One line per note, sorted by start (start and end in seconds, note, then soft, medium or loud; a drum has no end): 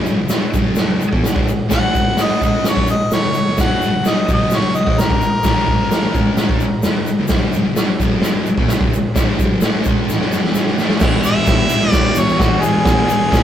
0.00 0.18 F#2 medium
0.00 0.18 C#3 loud
0.00 0.18 F#3 loud
0.06 shaker medium
0.20 0.31 F#2 medium
0.20 0.29 C#3 medium
0.29 0.41 B2 medium
0.29 0.42 F#3 medium
0.29 snare loud
0.29 open hi-hat medium
0.29 shaker loud
0.42 muted distorted electric guitar stroke medium
0.53 0.99 F#2 medium
0.53 1.00 C#3 loud
0.53 1.00 F#3 medium
0.53 kick medium
0.53 shaker medium
0.76 snare loud
0.76 open hi-hat medium
0.76 shaker medium
1.00 muted distorted electric guitar stroke medium
1.00 shaker medium
1.11 1.23 E3 medium
1.11 1.24 B3 medium
1.11 kick loud
1.24 1.34 F#2 medium
1.24 1.35 C#3 medium
1.24 snare loud
1.24 open hi-hat medium
1.24 shaker loud
1.35 1.47 F#2 medium
1.35 1.47 C#3 medium
1.35 kick loud
1.48 muted distorted electric guitar stroke medium
1.48 shaker medium
1.69 1.93 A2 medium
1.69 1.94 E3 medium
1.69 1.94 A3 loud
1.69 kick loud
1.69 snare loud
1.69 open hi-hat medium
1.69 shaker loud
1.73 2.23 F#5 loud
1.94 2.17 F#2 medium
1.94 2.17 C#3 medium
1.94 2.17 F#3 medium
1.94 kick loud
1.94 shaker medium
2.17 2.40 A2 medium
2.17 2.41 E3 medium
2.17 2.41 A3 loud
2.17 snare loud
2.17 open hi-hat medium
2.17 shaker loud
2.22 2.43 D#5 loud
2.42 2.76 C#3 medium
2.42 2.76 G#3 medium
2.42 2.77 C#4 loud
2.42 2.70 D#5 medium
2.42 kick medium
2.42 shaker medium
2.64 snare loud
2.64 open hi-hat medium
2.64 shaker medium
2.69 2.89 C#5 medium
2.77 2.88 F#3 loud
2.77 2.88 C#4 medium
2.77 kick loud
2.87 3.12 D#5 medium
2.87 muted distorted electric guitar stroke soft
2.87 shaker medium
3.11 3.58 C#5 loud
3.11 muted distorted electric guitar stroke medium
3.11 snare loud
3.11 open hi-hat medium
3.11 shaker loud
3.25 3.35 F#2 medium
3.25 3.36 C#3 medium
3.34 muted distorted electric guitar stroke medium
3.34 shaker medium
3.48 3.56 F#2 medium
3.48 3.57 C#3 medium
3.57 3.92 F#2 loud
3.57 3.92 C#3 loud
3.57 3.93 F#3 loud
3.57 4.09 F#5 loud
3.57 kick loud
3.57 snare loud
3.57 open hi-hat medium
3.57 shaker medium
3.82 shaker medium
3.93 4.05 F#2 medium
3.93 4.04 C#3 medium
4.05 4.16 B2 medium
4.05 4.16 F#3 loud
4.05 4.29 D#5 medium
4.05 snare loud
4.05 open hi-hat medium
4.05 shaker medium
4.17 muted distorted electric guitar stroke soft
4.28 4.74 F#2 loud
4.28 4.75 C#3 loud
4.28 4.75 F#3 loud
4.28 kick loud
4.28 shaker medium
4.33 4.57 D#5 medium
4.51 snare loud
4.51 open hi-hat soft
4.51 shaker medium
4.55 4.77 C#5 medium
4.75 5.02 D#5 medium
4.75 muted distorted electric guitar stroke medium
4.75 shaker medium
4.85 4.97 E3 medium
4.85 4.97 B3 medium
4.85 kick loud
4.98 5.09 F#2 medium
4.98 5.10 C#3 medium
4.98 6.35 A#4 loud
4.98 snare loud
4.98 open hi-hat medium
4.98 shaker medium
5.10 5.20 F#2 medium
5.10 5.21 C#3 loud
5.10 kick loud
5.21 muted distorted electric guitar stroke medium
5.21 shaker medium
5.43 5.67 A2 medium
5.43 5.67 E3 loud
5.43 5.67 A3 loud
5.43 kick loud
5.43 snare loud
5.43 open hi-hat medium
5.43 shaker medium
5.68 5.90 F#2 medium
5.68 5.91 C#3 loud
5.68 5.91 F#3 loud
5.68 kick loud
5.91 6.14 A2 medium
5.91 6.15 E3 medium
5.91 6.15 A3 medium
5.91 snare loud
5.91 open hi-hat medium
5.91 shaker medium
6.14 6.48 C#3 medium
6.14 6.49 G#3 loud
6.14 6.49 C#4 loud
6.14 kick loud
6.14 shaker medium
6.37 snare loud
6.37 open hi-hat medium
6.37 shaker medium
6.49 6.60 F#3 medium
6.49 6.61 C#4 loud
6.49 kick loud
6.60 muted distorted electric guitar stroke medium
6.60 shaker medium
6.83 muted distorted electric guitar stroke medium
6.83 snare loud
6.83 open hi-hat medium
6.83 shaker medium
6.96 7.07 F#2 medium
6.96 7.08 C#3 medium
7.06 muted distorted electric guitar stroke medium
7.06 shaker medium
7.19 7.29 F#2 medium
7.19 7.30 C#3 medium
7.28 7.64 F#2 loud
7.28 7.65 C#3 loud
7.28 kick loud
7.28 snare loud
7.28 open hi-hat medium
7.28 shaker medium
7.32 7.65 F#3 loud
7.53 shaker medium
7.65 7.77 F#2 medium
7.65 7.76 C#3 medium
7.76 7.87 B2 medium
7.76 7.88 F#3 medium
7.76 snare loud
7.76 open hi-hat medium
7.76 shaker loud
7.89 muted distorted electric guitar stroke soft
8.00 8.46 F#2 medium
8.00 8.46 C#3 loud
8.00 8.47 F#3 loud
8.00 kick medium
8.00 shaker medium
8.22 snare loud
8.22 open hi-hat medium
8.22 shaker medium
8.46 muted distorted electric guitar stroke medium
8.46 shaker medium
8.57 8.69 E3 medium
8.57 8.69 B3 medium
8.57 kick loud
8.68 8.80 F#2 medium
8.68 8.81 C#3 medium
8.68 snare loud
8.68 open hi-hat medium
8.68 shaker loud
8.81 8.91 F#2 loud
8.81 8.93 C#3 loud
8.81 kick loud
8.92 muted distorted electric guitar stroke medium
8.92 shaker medium
9.15 9.38 A2 medium
9.15 9.38 E3 loud
9.15 9.39 A3 loud
9.15 kick loud
9.15 snare loud
9.15 open hi-hat medium
9.15 shaker loud
9.37 9.61 F#2 medium
9.37 9.61 C#3 medium
9.37 9.62 F#3 loud
9.37 kick loud
9.37 shaker medium
9.61 9.83 A2 medium
9.61 9.85 E3 medium
9.61 9.85 A3 medium
9.61 snare loud
9.61 open hi-hat medium
9.61 shaker loud
9.84 10.07 C#3 medium
9.84 10.08 G#3 medium
9.84 10.08 C#4 loud
9.84 kick loud
9.84 shaker medium
10.09 10.20 A2 medium
10.09 10.20 E3 medium
10.09 snare medium
10.09 shaker medium
10.20 10.42 F#2 medium
10.20 10.43 C#3 loud
10.20 10.43 F#3 loud
10.20 snare medium
10.32 snare medium
10.32 shaker medium
10.43 10.54 E2 medium
10.43 10.54 B2 medium
10.43 snare medium
10.55 10.77 F#2 medium
10.55 10.77 C#3 medium
10.55 10.78 F#3 medium
10.55 snare medium
10.55 shaker medium
10.67 snare medium
10.78 11.00 A2 medium
10.78 11.01 E3 loud
10.78 11.01 A3 medium
10.78 snare medium
10.78 shaker medium
10.90 snare medium
11.00 11.25 E2 medium
11.00 11.24 B2 medium
11.00 11.26 E3 loud
11.00 kick loud
11.00 snare loud
11.00 crash loud
11.00 shaker medium
11.24 11.47 E2 medium
11.24 11.47 B2 medium
11.24 11.49 E3 medium
11.24 11.90 E5 loud
11.24 ride medium
11.24 shaker medium
11.46 11.69 E2 medium
11.46 11.70 B2 medium
11.46 11.71 E3 medium
11.46 kick loud
11.46 snare loud
11.46 ride loud
11.46 shaker medium
11.69 11.93 E2 medium
11.69 11.93 B2 medium
11.69 11.94 E3 loud
11.69 ride medium
11.69 shaker medium
11.90 12.15 E2 medium
11.90 12.16 B2 loud
11.90 12.20 D5 loud
11.90 kick loud
11.90 snare loud
11.90 ride loud
11.90 shaker medium
11.96 12.16 E3 loud
12.15 12.39 E2 medium
12.15 12.40 B2 medium
12.15 12.40 E3 loud
12.15 12.42 C#5 loud
12.15 ride medium
12.15 shaker loud
12.29 shaker soft
12.40 12.61 E2 medium
12.40 12.62 B2 medium
12.40 12.63 E3 loud
12.40 12.62 F#4 medium
12.40 kick loud
12.40 snare loud
12.40 ride medium
12.40 shaker medium
12.61 12.85 E2 medium
12.61 12.85 B2 medium
12.61 12.86 E3 loud
12.61 13.43 G#4 loud
12.61 ride medium
12.61 shaker medium
12.85 13.08 E2 medium
12.85 13.09 B2 loud
12.85 13.10 E3 loud
12.85 kick loud
12.85 snare loud
12.85 ride loud
12.85 shaker medium
13.09 13.30 E2 medium
13.09 13.31 B2 medium
13.09 13.31 E3 medium
13.09 ride medium
13.09 shaker medium
13.31 13.43 E2 medium
13.31 13.43 B2 medium
13.31 13.43 E3 medium
13.31 kick loud
13.31 snare loud
13.31 ride loud
13.31 shaker medium